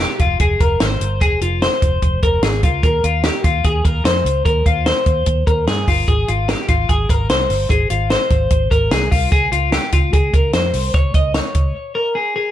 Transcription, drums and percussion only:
0.19 kick, closed hi-hat
0.40 kick, closed hi-hat
0.60 kick, closed hi-hat
0.80 snare, closed hi-hat
1.01 closed hi-hat
1.21 kick, closed hi-hat
1.41 closed hi-hat
1.62 snare, closed hi-hat
1.82 kick, closed hi-hat
2.02 kick, closed hi-hat
2.23 kick, closed hi-hat
2.43 snare, closed hi-hat
2.63 kick, closed hi-hat
2.83 kick, closed hi-hat
3.04 closed hi-hat
3.23 snare, closed hi-hat
3.44 kick, closed hi-hat
3.64 kick, closed hi-hat
3.85 kick, closed hi-hat
4.05 snare, closed hi-hat
4.26 closed hi-hat
4.46 kick, closed hi-hat
4.66 kick, closed hi-hat
4.86 snare, closed hi-hat
5.06 kick, closed hi-hat
5.26 kick, closed hi-hat
5.47 kick, closed hi-hat
5.67 snare, closed hi-hat
5.88 kick, open hi-hat
6.08 kick, closed hi-hat
6.28 closed hi-hat
6.49 snare, closed hi-hat
6.68 kick, closed hi-hat
6.89 kick, closed hi-hat
7.09 kick, closed hi-hat
7.29 snare, closed hi-hat
7.50 open hi-hat
7.70 kick, closed hi-hat
7.90 closed hi-hat
8.10 snare, closed hi-hat
8.30 kick, closed hi-hat
8.50 kick, closed hi-hat
8.71 kick, closed hi-hat
8.91 snare, closed hi-hat
9.12 kick, open hi-hat
9.32 kick, closed hi-hat
9.52 closed hi-hat
9.72 snare, closed hi-hat
9.92 kick, closed hi-hat
10.13 kick, closed hi-hat
10.34 kick, closed hi-hat
10.53 snare, closed hi-hat
10.73 open hi-hat
10.94 kick, closed hi-hat
11.14 kick, closed hi-hat
11.34 snare, closed hi-hat
11.55 kick, closed hi-hat

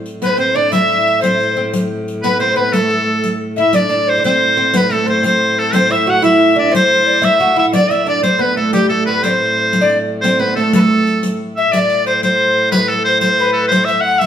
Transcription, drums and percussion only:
0.06 riq
0.22 riq
0.38 riq
0.73 riq
1.07 riq
1.24 riq
1.40 riq
1.74 riq
2.08 riq
2.24 riq
2.41 riq
2.73 riq
2.90 riq
3.24 riq
3.57 riq
3.73 riq
3.90 riq
4.24 riq
4.74 riq
4.91 riq
5.24 riq
5.73 riq
5.91 riq
6.24 riq
6.75 riq
7.23 riq
7.73 riq
7.91 riq
8.23 riq
8.73 riq
8.89 riq
9.24 riq
9.73 riq
9.89 riq
10.24 riq
10.73 riq
11.07 riq
11.23 riq
11.73 riq
11.89 riq
12.23 riq
12.72 riq
12.88 riq
13.21 riq
13.72 riq
13.88 riq
14.21 riq

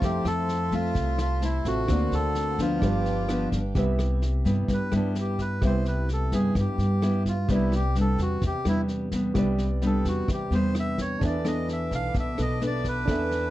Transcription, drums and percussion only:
0.02 kick, snare
0.25 cross-stick, snare
0.49 snare
0.72 kick, snare
0.95 kick, snare
1.18 cross-stick, snare
1.42 snare
1.65 kick, snare
1.88 kick, cross-stick, snare
2.12 snare
2.35 snare
2.58 kick, snare
2.82 kick, cross-stick, snare
3.05 snare
3.29 cross-stick, snare
3.52 kick, snare
3.75 kick, snare
3.99 cross-stick, snare
4.22 snare
4.45 kick, snare
4.68 kick, snare
4.92 cross-stick, snare
5.15 snare
5.39 kick, snare
5.62 kick, cross-stick, snare
5.85 snare
6.09 snare
6.32 kick, snare
6.55 kick, cross-stick, snare
6.79 snare
7.02 cross-stick, snare
7.25 kick, snare
7.48 kick, snare
7.72 cross-stick, snare
7.95 snare
8.18 kick, snare
8.42 kick, snare
8.65 cross-stick, snare
8.88 snare
9.12 kick, snare
9.35 kick, cross-stick, snare
9.58 snare
9.82 snare
10.05 kick, snare
10.28 kick, cross-stick, snare
10.52 snare
10.75 cross-stick, snare
10.98 kick, snare
11.21 kick, snare
11.45 cross-stick, snare
11.68 snare
11.91 kick, snare
12.15 kick, snare
12.38 cross-stick, snare
12.61 snare
12.84 kick, snare
13.08 kick, cross-stick, snare
13.31 snare

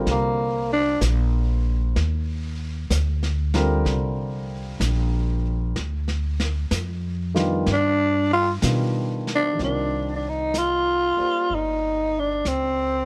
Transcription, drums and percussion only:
0.07 brush sweep, snare
1.01 snare, hi-hat pedal
1.96 brush sweep, snare
2.90 snare, hi-hat pedal
3.23 snare
3.54 snare
3.55 snare
3.86 brush sweep, snare
4.81 snare, hi-hat pedal
5.76 brush sweep, snare
6.08 snare
6.40 snare
6.71 snare, hi-hat pedal
7.36 snare
7.66 brush sweep, snare
8.62 snare, hi-hat pedal
9.27 snare
9.59 brush sweep, snare
10.54 brush sweep, snare, hi-hat pedal
11.50 brush sweep
12.45 brush sweep, snare, hi-hat pedal

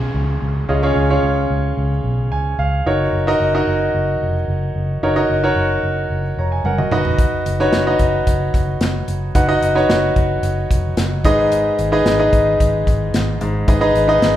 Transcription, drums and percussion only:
6.65 high tom
6.78 mid tom
6.92 mid tom
7.05 floor tom
7.19 kick, closed hi-hat
7.46 closed hi-hat
7.60 snare
7.73 snare, closed hi-hat
7.99 kick, closed hi-hat
8.27 kick, closed hi-hat
8.54 kick, closed hi-hat
8.81 snare, closed hi-hat
9.08 closed hi-hat
9.35 kick, closed hi-hat
9.62 closed hi-hat
9.76 snare
9.90 snare, closed hi-hat
10.16 kick, closed hi-hat
10.43 closed hi-hat
10.71 kick, closed hi-hat
10.97 snare, closed hi-hat
11.24 kick, closed hi-hat
11.52 closed hi-hat
11.79 closed hi-hat
12.06 snare, closed hi-hat
12.33 kick, closed hi-hat
12.60 kick, closed hi-hat
12.87 kick, closed hi-hat
13.14 snare, closed hi-hat
13.41 closed hi-hat
13.68 kick, closed hi-hat
13.95 closed hi-hat
14.22 snare, closed hi-hat

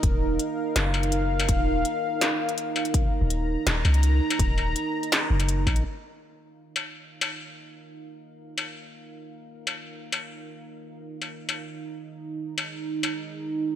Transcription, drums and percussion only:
0.03 kick, closed hi-hat
0.39 closed hi-hat
0.76 snare, closed hi-hat
0.94 struck metal
1.03 closed hi-hat
1.12 closed hi-hat
1.40 closed hi-hat, struck metal
1.49 kick, closed hi-hat
1.85 closed hi-hat
2.21 snare, closed hi-hat
2.49 closed hi-hat
2.58 closed hi-hat
2.76 struck metal
2.85 closed hi-hat
2.94 kick, closed hi-hat
3.30 closed hi-hat
3.67 snare, closed hi-hat
3.85 struck metal
3.94 closed hi-hat
4.03 closed hi-hat
4.30 closed hi-hat, struck metal
4.39 kick, closed hi-hat
4.58 struck metal
4.76 closed hi-hat
5.03 closed hi-hat
5.12 snare, closed hi-hat
5.40 closed hi-hat, struck metal
5.49 closed hi-hat
5.67 kick, struck metal
5.76 closed hi-hat
6.76 struck metal
7.21 struck metal
8.58 struck metal
9.67 struck metal
10.12 struck metal
11.22 struck metal
11.49 struck metal
12.58 struck metal
13.03 struck metal

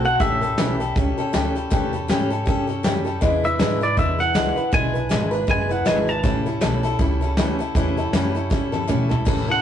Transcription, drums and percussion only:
0.04 closed hi-hat
0.20 kick, closed hi-hat
0.42 closed hi-hat
0.58 snare, closed hi-hat
0.81 closed hi-hat
0.96 kick, closed hi-hat
1.18 closed hi-hat
1.34 snare, closed hi-hat
1.56 closed hi-hat
1.72 kick, closed hi-hat
1.94 closed hi-hat
2.09 snare, closed hi-hat
2.32 closed hi-hat
2.47 kick, closed hi-hat
2.69 closed hi-hat
2.84 snare, closed hi-hat
3.07 closed hi-hat
3.22 kick, closed hi-hat
3.44 closed hi-hat
3.59 snare, closed hi-hat
3.82 closed hi-hat
3.97 kick, closed hi-hat
4.20 closed hi-hat
4.35 snare, closed hi-hat
4.57 closed hi-hat
4.73 kick, closed hi-hat
4.95 closed hi-hat
5.11 snare, closed hi-hat
5.33 closed hi-hat
5.48 kick, closed hi-hat
5.70 closed hi-hat
5.86 snare, closed hi-hat
6.08 closed hi-hat
6.24 kick, closed hi-hat
6.46 closed hi-hat
6.61 snare, closed hi-hat
6.84 closed hi-hat
6.99 kick, closed hi-hat
7.22 closed hi-hat
7.37 snare, closed hi-hat
7.60 closed hi-hat
7.75 kick, closed hi-hat
7.97 closed hi-hat
8.13 snare, closed hi-hat
8.35 closed hi-hat
8.51 kick, snare
8.73 high tom
8.89 mid tom
9.11 floor tom
9.27 kick, crash

